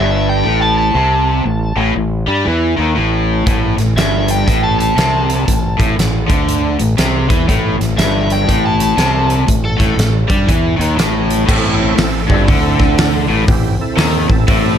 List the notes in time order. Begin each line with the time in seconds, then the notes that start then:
Already playing: G1 G2 E5
0.29 G5
0.45 A1 A2
0.62 A5
0.79 A5
0.95 C2 C3
1.45 A1 A2
1.76 A1 A2
1.96 A1 A2
2.27 G2 G3
2.44 E2 E3
2.77 D#2 D#3
2.95 A1 A2
3.46 A1 A2, kick, closed hi-hat
3.77 A1 A2, snare, closed hi-hat
3.96 G1 G2 E5, snare, closed hi-hat
4.28 G5, closed hi-hat
4.47 A1 A2, kick, closed hi-hat
4.64 A5
4.79 A5, closed hi-hat
4.96 C2 C3, snare, closed hi-hat
5.30 closed hi-hat
5.46 A1 A2, kick, closed hi-hat
5.78 A1 A2, kick, closed hi-hat
5.97 A1 A2, snare, closed hi-hat
6.28 D2 D3, kick, closed hi-hat
6.49 closed hi-hat
6.79 A1 A2, closed hi-hat
6.98 C2 C3, snare, closed hi-hat
7.29 E2 E3, kick, closed hi-hat
7.48 A1 A2, kick, closed hi-hat
7.78 A1 A2, snare, closed hi-hat
7.98 G1 G2 E5, snare, closed hi-hat
8.30 G5, closed hi-hat
8.47 A1 A2, kick, closed hi-hat
8.66 A5
8.80 A5, closed hi-hat
8.97 C2 C3, snare, closed hi-hat
9.30 closed hi-hat
9.47 A1 A2, kick, closed hi-hat
9.65 A4
9.78 A1 A2, kick, snare, closed hi-hat
9.96 A1 A2, snare, closed hi-hat
10.29 G2 G3, kick, closed hi-hat
10.47 E2 E3, kick, closed hi-hat
10.77 D#2 D#3
10.81 closed hi-hat
10.97 A1 A2, snare, closed hi-hat
11.30 closed hi-hat
11.47 A1 A2 C4 E4 A4, kick, crash
11.79 C4 E4 A4
11.96 A1 A2, snare, open hi-hat
12.28 G1 G2 C4 E4 A4, kick
12.48 D2 D3, kick, open hi-hat
12.80 kick, snare
12.98 snare, open hi-hat
13.28 A1 A2
13.47 A1 A2 C4 E4 G4, kick, open hi-hat
13.79 C4 E4 A4
13.97 D#2 D#3, snare, open hi-hat
14.26 A1 A2 C4 E4 A4, kick
14.48 A1 A2, kick, open hi-hat